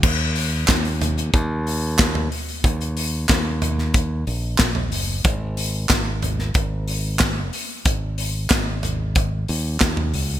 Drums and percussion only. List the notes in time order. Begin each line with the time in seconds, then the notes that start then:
0.03 kick, crash
0.36 hi-hat pedal, open hi-hat
0.68 kick, snare, clap, hi-hat pedal, open hi-hat
0.85 open hi-hat
1.01 floor tom, hi-hat pedal, open hi-hat
1.18 hi-hat pedal
1.34 kick, hi-hat pedal, open hi-hat
1.67 hi-hat pedal, open hi-hat
1.99 kick, snare, clap, hi-hat pedal, open hi-hat
2.15 floor tom
2.32 hi-hat pedal, open hi-hat
2.49 open hi-hat
2.64 kick, hi-hat pedal, open hi-hat
2.80 hi-hat pedal
2.97 hi-hat pedal, open hi-hat
3.29 kick, snare, clap, hi-hat pedal, open hi-hat
3.62 floor tom, hi-hat pedal, open hi-hat
3.78 snare
3.94 kick, hi-hat pedal, open hi-hat
4.27 hi-hat pedal, open hi-hat
4.58 kick, snare, clap, hi-hat pedal, open hi-hat
4.75 floor tom
4.92 hi-hat pedal, open hi-hat
5.24 kick, hi-hat pedal, open hi-hat
5.57 hi-hat pedal, open hi-hat
5.89 kick, snare, clap, hi-hat pedal, open hi-hat
6.22 floor tom, hi-hat pedal, open hi-hat
6.39 snare
6.54 kick, hi-hat pedal, open hi-hat
6.87 hi-hat pedal, open hi-hat
7.19 kick, snare, clap, hi-hat pedal, open hi-hat
7.53 hi-hat pedal, open hi-hat
7.85 kick, hi-hat pedal, open hi-hat
8.18 hi-hat pedal, open hi-hat
8.50 kick, snare, clap, hi-hat pedal, open hi-hat
8.83 floor tom, hi-hat pedal, open hi-hat
9.15 kick, hi-hat pedal, open hi-hat
9.48 hi-hat pedal, open hi-hat
9.80 kick, snare, clap, hi-hat pedal, open hi-hat
9.97 floor tom
10.13 hi-hat pedal, open hi-hat
10.30 open hi-hat